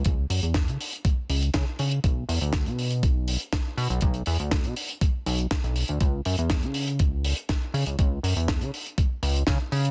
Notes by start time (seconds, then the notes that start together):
0.05 C#2, kick, closed hi-hat
0.30 F#2, open hi-hat
0.43 E2, closed hi-hat
0.54 kick, snare, closed hi-hat
0.68 C#3, closed hi-hat
0.81 open hi-hat
0.93 closed hi-hat
1.05 kick, closed hi-hat
1.29 C#2, open hi-hat
1.43 closed hi-hat
1.54 C#3, kick, snare, closed hi-hat
1.79 C#3, open hi-hat
1.91 closed hi-hat
2.04 B1, kick, closed hi-hat
2.29 E2, open hi-hat
2.41 D2, closed hi-hat
2.53 kick, snare, closed hi-hat
2.66 B2, closed hi-hat
2.79 open hi-hat
2.91 closed hi-hat
3.03 B1, kick, closed hi-hat
3.28 open hi-hat
3.40 closed hi-hat
3.53 kick, snare, closed hi-hat
3.77 B2, open hi-hat
3.90 B1, closed hi-hat
4.01 B1, kick, closed hi-hat
4.14 closed hi-hat
4.26 E2, open hi-hat
4.40 D2, closed hi-hat
4.51 kick, snare, closed hi-hat
4.64 B2, closed hi-hat
4.76 open hi-hat
4.89 closed hi-hat
5.01 kick, closed hi-hat
5.26 B1, open hi-hat
5.39 closed hi-hat
5.51 kick, snare, closed hi-hat
5.64 B1, closed hi-hat
5.76 open hi-hat
5.88 D2, closed hi-hat
6.00 C#2, kick, closed hi-hat
6.25 F#2, open hi-hat
6.38 E2, closed hi-hat
6.50 kick, snare, closed hi-hat
6.63 C#3, closed hi-hat
6.74 open hi-hat
6.88 closed hi-hat
6.99 C#2, kick, closed hi-hat
7.24 open hi-hat
7.37 closed hi-hat
7.49 kick, snare, closed hi-hat
7.74 C#3, open hi-hat
7.86 C#2, closed hi-hat
7.99 C#2, kick, closed hi-hat
8.23 F#2, open hi-hat
8.36 E2, closed hi-hat
8.48 kick, snare, closed hi-hat
8.61 C#3, closed hi-hat
8.74 open hi-hat
8.87 closed hi-hat
8.98 kick, closed hi-hat
9.23 C#2, open hi-hat
9.36 closed hi-hat
9.47 C#3, kick, snare, closed hi-hat
9.72 C#3, open hi-hat
9.85 closed hi-hat